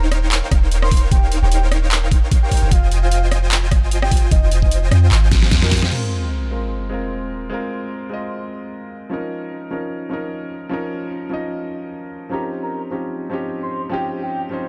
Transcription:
0.00 0.41 D#1 loud
0.00 0.89 D#4 medium
0.00 0.89 A#4 medium
0.00 0.89 C5 medium
0.00 0.89 C#5 medium
0.00 0.89 F5 medium
0.00 0.89 G5 medium
0.12 cross-stick medium
0.12 closed hi-hat medium
0.32 clap loud
0.32 closed hi-hat medium
0.51 1.41 D#1 loud
0.51 kick loud
0.51 cross-stick medium
0.51 closed hi-hat medium
0.72 closed hi-hat medium
0.82 1.02 C6 medium
0.82 cross-stick medium
0.91 1.08 D#4 medium
0.91 1.08 A#4 medium
0.91 1.08 C5 medium
0.91 1.08 F5 medium
0.91 1.08 G5 medium
0.91 kick loud
0.91 open hi-hat medium
0.97 closed hi-hat medium
1.11 2.49 D#4 medium
1.11 2.49 A#4 medium
1.11 2.49 C5 medium
1.11 2.49 C#5 medium
1.11 2.49 F5 medium
1.11 1.31 G5 loud
1.11 2.49 G5 medium
1.11 kick loud
1.11 closed hi-hat medium
1.32 closed hi-hat medium
1.42 2.21 D#1 medium
1.42 1.62 G5 medium
1.52 closed hi-hat medium
1.72 cross-stick medium
1.72 closed hi-hat medium
1.92 clap loud
1.92 closed hi-hat medium
2.12 kick loud
2.12 closed hi-hat medium
2.31 kick loud
2.31 closed hi-hat medium
2.42 2.73 G5 medium
2.51 2.68 D#4 medium
2.51 2.68 A#4 medium
2.51 2.68 C5 medium
2.51 2.68 C#5 medium
2.51 2.68 F5 medium
2.51 2.68 G5 medium
2.51 kick medium
2.51 open hi-hat loud
2.57 closed hi-hat medium
2.62 3.73 F1 medium
2.71 4.09 F4 medium
2.71 4.09 C5 medium
2.71 4.09 D#5 medium
2.71 2.91 F5 loud
2.71 4.09 G5 medium
2.71 4.09 G#5 medium
2.71 kick loud
2.71 closed hi-hat medium
2.92 closed hi-hat medium
3.03 3.22 F5 medium
3.12 closed hi-hat medium
3.31 cross-stick medium
3.31 closed hi-hat medium
3.51 clap loud
3.51 closed hi-hat medium
3.71 4.30 G1 loud
3.71 kick loud
3.71 cross-stick medium
3.71 closed hi-hat medium
3.91 closed hi-hat medium
4.02 4.22 G5 loud
4.02 cross-stick medium
4.11 4.28 F4 medium
4.11 4.28 C5 medium
4.11 4.28 G#5 medium
4.11 kick loud
4.11 open hi-hat loud
4.17 closed hi-hat medium
4.31 4.90 F1 loud
4.31 4.51 D#5 loud
4.31 5.60 D#5 medium
4.31 kick loud
4.31 closed hi-hat medium
4.51 closed hi-hat medium
4.62 4.82 D#5 medium
4.62 kick medium
4.71 closed hi-hat medium
4.91 5.11 F2 medium
4.91 cross-stick medium
4.91 closed hi-hat medium
5.11 5.53 G#1 loud
5.11 clap loud
5.11 closed hi-hat medium
5.32 kick loud
5.32 snare medium
5.32 closed hi-hat medium
5.42 snare medium
5.51 5.90 F2 medium
5.51 kick loud
5.51 snare medium
5.51 closed hi-hat medium
5.62 5.69 F4 medium
5.62 5.82 A#4 medium
5.62 5.69 C5 medium
5.62 5.69 D#5 medium
5.62 5.69 G5 medium
5.62 5.69 G#5 medium
5.62 snare medium
5.71 5.89 F4 medium
5.71 5.89 C5 medium
5.71 5.89 D#5 medium
5.71 5.89 G5 medium
5.71 5.89 G#5 medium
5.71 kick medium
5.71 snare loud
5.71 open hi-hat loud
5.77 closed hi-hat medium
5.82 snare medium
5.89 6.48 G#3 medium
5.89 6.49 C4 medium
5.89 6.50 F4 medium
5.89 crash medium
5.89 sub drop medium
5.93 6.50 A#4 medium
6.51 6.88 G#3 medium
6.51 6.89 C4 medium
6.51 6.90 F4 medium
6.51 6.90 A#4 medium
6.90 7.48 G#3 medium
6.90 7.49 C4 medium
6.90 7.50 F4 medium
6.94 7.50 A#4 medium
7.50 8.08 G#3 medium
7.50 8.09 C4 medium
7.50 8.10 F4 medium
7.54 8.10 A#4 loud
8.10 9.08 G#3 medium
8.10 9.09 C4 medium
8.10 9.10 F4 medium
8.10 9.10 D#5 medium
9.10 9.68 F3 medium
9.10 9.69 C#4 medium
9.10 9.70 D#4 medium
9.10 9.70 A#4 medium
9.71 10.08 F3 medium
9.71 10.09 C#4 medium
9.71 10.10 D#4 medium
9.71 10.10 A#4 medium
10.09 10.68 F3 medium
10.09 10.69 C#4 medium
10.09 10.70 D#4 medium
10.09 10.70 A#4 medium
10.69 11.28 F3 medium
10.69 11.29 C#4 medium
10.69 11.30 D#4 medium
10.69 11.30 A#4 loud
11.30 12.28 F3 medium
11.30 12.29 C#4 medium
11.30 12.30 D#4 medium
11.30 12.30 D#5 medium
12.29 12.88 F3 medium
12.29 12.89 C4 medium
12.29 12.89 C#4 medium
12.29 12.90 D#4 medium
12.29 12.90 G4 medium
12.29 12.51 A#5 loud
12.63 12.82 A#5 medium
12.91 13.28 F3 medium
12.91 13.29 C4 medium
12.91 13.29 C#4 medium
12.91 13.30 D#4 medium
12.91 13.30 G4 medium
13.29 13.88 F3 medium
13.29 13.89 C4 medium
13.29 13.89 C#4 medium
13.29 13.90 D#4 medium
13.33 13.90 G4 medium
13.62 13.82 C6 medium
13.90 14.48 F3 loud
13.90 14.49 C4 medium
13.90 14.49 C#4 medium
13.90 14.50 D#4 medium
13.90 14.50 G4 loud
13.90 14.11 G5 loud
14.23 14.42 G5 medium
14.49 14.69 F3 medium
14.49 14.69 C4 medium
14.49 14.69 C#4 medium
14.49 14.69 D#4 medium
14.54 14.69 C5 medium

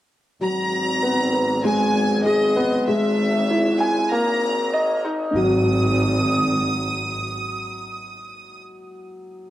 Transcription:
0.40 2.85 G#1 medium
0.40 0.70 F#3 medium
0.40 1.61 A#5 loud
1.03 1.32 B3 medium
1.33 1.63 B4 medium
1.64 1.82 G#3 medium
1.64 2.22 G#5 loud
2.26 2.56 G#4 loud
2.26 2.88 D#5 medium
2.56 2.75 B3 medium
2.88 4.09 G#1 medium
2.88 3.17 G#3 medium
2.88 3.77 E5 loud
3.50 3.80 E4 medium
3.80 4.12 G#5 loud
3.80 4.10 G#5 medium
4.12 5.33 G#1 medium
4.12 4.30 A#3 loud
4.12 5.05 A#5 loud
4.73 5.03 D#5 loud
5.05 5.22 D#4 loud
5.36 7.17 G#1 loud
5.36 5.64 F#3 medium
5.36 8.59 D#6 loud

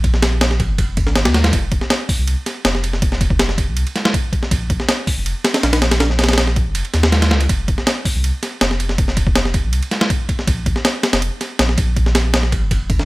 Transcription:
0.00 0.71 A#1 medium
0.00 kick medium
0.00 ride medium
0.14 snare soft
0.22 snare loud
0.22 ride medium
0.41 snare loud
0.41 ride medium
0.51 snare medium
0.60 kick loud
0.60 ride medium
0.70 0.99 F1 loud
0.78 kick loud
0.78 ride medium
0.97 1.27 G#1 loud
0.97 kick medium
0.97 ride medium
1.07 snare soft
1.16 snare loud
1.16 ride medium
1.25 1.52 D#2 loud
1.25 snare loud
1.25 ride medium
1.34 snare loud
1.34 ride medium
1.44 snare loud
1.44 ride medium
1.53 1.80 F1 loud
1.53 kick loud
1.53 ride medium
1.72 kick loud
1.72 ride medium
1.81 snare medium
1.90 snare loud
1.90 ride medium
2.09 kick loud
2.09 open hi-hat medium
2.19 2.35 C2 loud
2.27 ride medium
2.46 snare medium
2.46 ride medium
2.65 3.69 F1 medium
2.65 snare loud
2.65 ride medium
2.75 snare medium
2.84 ride medium
2.93 snare soft
3.02 kick loud
3.02 ride medium
3.12 snare soft
3.21 kick loud
3.21 ride medium
3.30 kick loud
3.39 snare loud
3.39 ride medium
3.49 snare medium
3.58 kick loud
3.58 ride medium
3.68 3.84 C2 loud
3.77 ride medium
3.87 ride soft
3.96 snare medium
3.96 ride medium
4.05 snare loud
4.14 kick loud
4.14 ride medium
4.33 kick medium
4.33 ride medium
4.43 snare soft
4.51 4.78 A#1 loud
4.51 kick loud
4.51 ride medium
4.70 kick loud
4.70 ride medium
4.80 snare medium
4.89 snare loud
4.89 ride medium
5.07 kick loud
5.07 open hi-hat medium
5.17 5.34 F1 loud
5.26 ride medium
5.45 snare loud
5.45 ride medium
5.54 snare loud
5.54 ride medium
5.63 6.68 A#1 medium
5.63 snare loud
5.63 ride medium
5.73 snare loud
5.73 ride medium
5.82 snare loud
5.82 ride medium
5.91 snare loud
5.91 ride medium
6.00 snare loud
6.00 ride medium
6.10 snare soft
6.19 snare medium
6.19 ride medium
6.24 snare medium
6.24 ride medium
6.29 snare medium
6.29 ride medium
6.33 snare medium
6.33 ride medium
6.38 snare loud
6.38 ride medium
6.47 snare medium
6.56 kick medium
6.56 ride medium
6.66 6.83 F1 loud
6.75 ride medium
6.85 ride soft
6.94 7.32 D#2 medium
6.94 snare medium
6.94 ride medium
7.03 snare loud
7.12 snare loud
7.12 ride medium
7.22 snare loud
7.22 ride medium
7.31 7.48 C#2 medium
7.31 snare loud
7.40 ride medium
7.49 7.76 F1 loud
7.49 kick loud
7.49 ride medium
7.68 kick loud
7.68 ride medium
7.78 snare medium
7.87 snare loud
7.87 ride medium
8.05 kick medium
8.05 open hi-hat medium
8.15 8.32 C2 loud
8.24 ride medium
8.43 snare soft
8.43 ride medium
8.61 9.66 F1 medium
8.61 snare loud
8.61 ride medium
8.71 snare medium
8.80 ride medium
8.89 snare soft
8.98 kick loud
8.98 ride medium
9.08 snare soft
9.17 kick loud
9.17 ride medium
9.27 kick loud
9.36 snare loud
9.36 ride medium
9.45 snare medium
9.54 kick loud
9.54 ride medium
9.64 9.81 C2 loud
9.73 ride medium
9.82 ride soft
9.91 snare medium
9.91 ride medium
10.01 snare loud
10.10 kick loud
10.10 ride medium
10.29 kick medium
10.29 ride medium
10.39 snare soft
10.47 10.74 A#1 loud
10.47 kick loud
10.47 ride medium
10.66 kick loud
10.66 ride medium
10.76 snare medium
10.85 snare loud
10.85 ride medium
11.03 snare loud
11.03 ride medium
11.13 11.30 F1 loud
11.13 snare loud
11.13 ride medium
11.22 ride medium
11.41 snare medium
11.41 ride medium
11.59 12.64 A#1 medium
11.59 snare loud
11.59 ride medium
11.69 snare medium
11.78 kick loud
11.78 ride medium
11.96 kick medium
11.96 ride medium
12.06 snare soft
12.15 snare loud
12.15 ride medium
12.34 snare loud
12.34 ride medium
12.43 snare medium
12.52 kick loud
12.52 ride medium
12.62 12.91 F1 loud
12.71 kick loud
12.71 ride medium
12.90 13.05 G#1 loud
12.90 kick medium
12.90 ride medium
12.99 snare soft

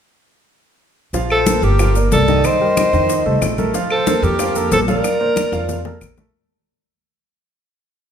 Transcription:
1.13 1.59 A#1 medium
1.13 1.41 F3 medium
1.13 1.41 F4 medium
1.13 1.41 F5 medium
1.13 high bongo medium
1.13 high conga soft
1.13 maracas medium
1.30 1.66 A4 medium
1.30 1.64 C5 medium
1.30 high conga soft
1.30 claves medium
1.46 1.73 A#3 medium
1.46 1.74 A4 medium
1.46 1.74 A#4 medium
1.46 high bongo medium
1.46 high conga medium
1.46 maracas medium
1.62 2.08 G1 medium
1.62 1.96 G4 medium
1.62 1.96 A#4 medium
1.62 high bongo soft
1.62 high conga soft
1.62 maracas soft
1.79 1.93 F3 medium
1.79 1.93 F4 medium
1.79 1.93 F5 medium
1.79 high bongo medium
1.79 high conga soft
1.79 claves medium
1.79 maracas medium
1.95 2.22 A#3 medium
1.95 2.22 A#4 medium
1.95 2.23 D5 medium
1.95 high bongo soft
1.95 high conga soft
1.95 maracas medium
2.11 2.40 C2 medium
2.11 2.47 A4 medium
2.11 2.46 D5 medium
2.11 high bongo medium
2.11 low bongo medium
2.11 high conga medium
2.11 maracas medium
2.28 2.55 D#3 medium
2.28 2.55 D#4 medium
2.28 2.55 D#5 medium
2.28 high bongo soft
2.28 high conga medium
2.28 maracas soft
2.44 3.43 C5 medium
2.44 3.42 D#5 medium
2.44 high bongo medium
2.44 high conga soft
2.44 claves medium
2.44 maracas medium
2.61 2.87 G3 medium
2.61 2.88 G4 medium
2.61 2.88 A#4 medium
2.61 high bongo soft
2.61 high conga soft
2.77 high bongo medium
2.77 high conga medium
2.77 claves medium
2.77 maracas medium
2.93 3.23 F2 medium
2.93 3.20 D#3 medium
2.93 3.20 D#4 medium
2.93 3.20 D#5 medium
2.93 high bongo soft
2.93 high conga soft
2.93 maracas soft
3.09 high bongo medium
3.09 high conga soft
3.09 maracas medium
3.25 3.41 C2 medium
3.25 3.52 A3 medium
3.25 3.53 A4 medium
3.25 3.53 C5 medium
3.25 high conga soft
3.41 3.70 A#1 medium
3.41 high bongo medium
3.41 low bongo medium
3.41 high conga soft
3.41 claves medium
3.41 maracas medium
3.58 3.72 A3 medium
3.58 3.72 A4 medium
3.58 3.72 A#4 medium
3.58 high bongo soft
3.58 high conga medium
3.58 maracas soft
3.74 4.01 F3 medium
3.74 4.01 F4 medium
3.74 4.01 F5 medium
3.74 high bongo medium
3.74 high conga soft
3.74 maracas medium
3.90 4.25 A4 medium
3.90 4.25 C5 medium
3.90 high conga soft
3.90 claves medium
4.07 4.34 A#3 medium
4.07 4.34 A4 medium
4.07 4.34 A#4 medium
4.07 high bongo medium
4.07 high conga medium
4.07 maracas medium
4.22 4.68 F2 loud
4.22 4.72 G4 medium
4.22 4.71 A#4 medium
4.22 high bongo soft
4.22 high conga soft
4.22 maracas soft
4.39 4.53 F3 medium
4.39 4.53 F4 medium
4.39 4.53 F5 medium
4.39 high bongo medium
4.39 high conga soft
4.39 claves medium
4.39 maracas medium
4.55 4.82 A#3 medium
4.55 4.82 A4 medium
4.55 4.82 A#4 medium
4.55 high bongo soft
4.55 high conga soft
4.55 maracas medium
4.71 5.00 A#1 medium
4.71 4.80 A4 medium
4.71 4.78 C5 medium
4.71 high bongo medium
4.71 low bongo medium
4.71 high conga medium
4.71 maracas medium
4.88 5.14 F3 medium
4.88 5.15 F4 medium
4.88 5.98 A#4 loud
4.88 5.97 D5 medium
4.88 5.15 F5 medium
4.88 high bongo soft
4.88 high conga medium
4.88 maracas soft
5.04 high bongo medium
5.04 high conga soft
5.04 claves medium
5.04 maracas medium
5.20 5.47 A#3 medium
5.20 5.47 A#4 medium
5.20 5.47 C5 medium
5.20 high bongo soft
5.20 high conga soft
5.36 high bongo medium
5.36 high conga medium
5.36 claves medium
5.36 maracas medium
5.52 5.98 F2 medium
5.52 5.79 F3 medium
5.52 5.79 F4 medium
5.52 5.80 F5 medium
5.52 high bongo medium
5.52 high conga soft
5.52 maracas soft
5.69 low bongo medium
5.69 high conga soft
5.69 maracas medium
5.85 6.12 A#3 medium
5.85 6.12 A4 medium
5.85 6.12 A#4 medium
5.85 low bongo medium
5.85 high conga soft
6.01 6.30 A#1 medium
6.01 low bongo medium
6.01 high conga soft
6.01 claves medium
6.01 maracas medium
6.17 6.31 A3 medium
6.17 6.31 A4 medium
6.17 6.31 A#4 medium
6.17 low bongo medium
6.17 high conga medium
6.17 maracas soft

